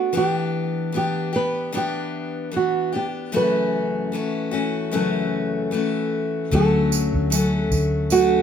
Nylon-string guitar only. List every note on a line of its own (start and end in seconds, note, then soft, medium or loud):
0.00 0.16 F#4 medium
0.17 0.96 G4 medium
0.97 1.32 G4 medium
1.36 1.76 B4 loud
1.77 2.56 G4 medium
2.56 2.96 F#4 medium
2.96 3.06 G4 medium
3.37 4.95 B4 medium
4.95 6.10 A4 medium
6.55 7.63 A4 medium
7.63 8.12 G4 medium
8.12 8.42 F#4 medium